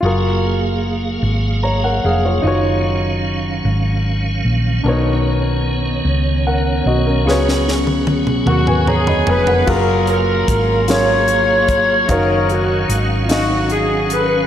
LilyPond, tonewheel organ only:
<<
  \new Staff \with { instrumentName = "Tonewheel organ" } { \time 6/8 \key fis \major \tempo 4. = 50 eis''2. | cis'2.~ | cis'2.~ | cis'2. |
eis''2. | cis'2. | }
  \new Staff \with { instrumentName = "Tonewheel organ" } { \time 6/8 \key fis \major << { <fis gis'>2. | dis2. | <dis cis''>2. | <fis gis'>2. |
<fis gis'>2. | dis2. | } \\ { ais2. | r2. | b2.~ | b2. |
ais2. | r2. | } >> }
>>